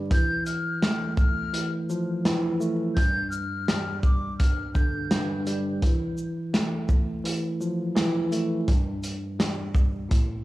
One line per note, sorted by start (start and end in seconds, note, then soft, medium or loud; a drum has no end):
0.00 0.12 G2 loud
0.00 0.11 D3 medium
0.00 0.11 G3 medium
0.10 1.52 E3 medium
0.10 0.44 G6 loud
0.10 kick loud
0.10 closed hi-hat medium
0.46 1.14 F6 medium
0.46 closed hi-hat soft
0.46 shaker medium
0.82 2.59 A3 medium
0.82 cross-stick medium
0.82 snare loud
0.82 closed hi-hat medium
1.17 1.72 F6 medium
1.17 kick loud
1.17 shaker medium
1.53 2.25 E3 medium
1.53 closed hi-hat medium
1.90 2.97 F3 medium
1.90 shaker soft
2.25 2.97 E3 loud
2.25 cross-stick loud
2.25 snare loud
2.25 closed hi-hat medium
2.60 2.96 A3 medium
2.60 shaker soft
2.96 4.40 G2 medium
2.96 3.28 G6 loud
2.96 kick loud
2.96 closed hi-hat medium
3.30 3.99 F6 medium
3.30 shaker medium
3.68 5.45 G3 medium
3.68 cross-stick medium
3.68 snare loud
3.68 closed hi-hat medium
4.03 4.36 D6 medium
4.03 kick loud
4.03 shaker medium
4.38 5.10 G2 medium
4.38 4.71 F6 medium
4.38 kick medium
4.38 closed hi-hat medium
4.75 5.82 D3 medium
4.75 5.28 G6 medium
4.75 kick medium
4.75 shaker soft
5.11 5.82 G2 loud
5.11 cross-stick loud
5.11 snare loud
5.11 closed hi-hat medium
5.46 5.82 G3 medium
5.46 closed hi-hat medium
5.46 shaker soft
5.82 7.23 E3 medium
5.82 kick loud
5.82 closed hi-hat medium
6.18 shaker medium
6.54 8.31 A3 medium
6.54 cross-stick medium
6.54 snare loud
6.54 closed hi-hat medium
6.89 kick medium
6.89 shaker medium
7.24 7.94 E3 medium
7.24 closed hi-hat medium
7.61 8.68 F3 medium
7.61 shaker soft
7.95 8.68 E3 loud
7.95 cross-stick medium
7.95 snare loud
7.95 closed hi-hat medium
8.32 8.68 A3 medium
8.32 closed hi-hat soft
8.32 shaker medium
8.68 10.11 G2 medium
8.68 kick loud
8.68 closed hi-hat medium
9.03 closed hi-hat medium
9.03 shaker medium
9.39 10.11 G3 medium
9.39 cross-stick medium
9.39 snare loud
9.39 closed hi-hat medium
9.75 kick loud
9.75 shaker medium
10.09 10.44 A2 medium
10.09 kick medium
10.09 closed hi-hat medium